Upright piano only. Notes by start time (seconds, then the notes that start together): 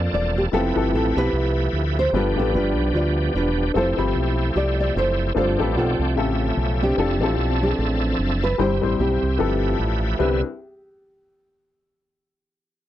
0.52 B3 E4 F4 G4 A4
0.75 F3 E4 G4 A4 B4
2.13 G2 B3 D4 F4 G4 B4
2.36 B3 D4 F4 G4 B4
3.74 C4 E4 F4 G4 A4
3.97 F3 C4 E4 G4 B5
5.35 G2 C4 D4 F4 G4 A4
5.58 C4 D4 F4 G4 A4
6.16 A2 C#3 F4 G4 A4 E5
6.97 C4 D4 E4 F4 A4
7.21 C4 D4 E4 F4 A4
8.58 G2 G3 C4 E4 G4 C5
8.81 G3 C4 E4 G4 C5
9.38 G2 F3 E4 G4 A4 B4
10.19 C2 C4 D4 E4 B4